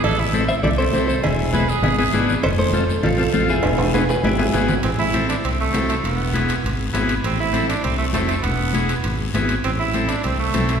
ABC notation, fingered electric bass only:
X:1
M:4/4
L:1/8
Q:1/4=200
K:Am
V:1 name="Fingered electric bass" clef=bass
A,,,4 C,,2 C,,2 | E,,,4 ^G,,,2 G,,,2 | F,,,4 A,,,2 A,,,2 | E,,,4 ^G,,,2 G,,,2 |
A,,,4 C,,2 C,,2 | E,,,4 ^G,,,2 G,,,2 | A,,,4 C,,2 F,,,2 | E,,,4 ^G,,,2 G,,,2 |
A,,,4 C,,2 B,,,2 |]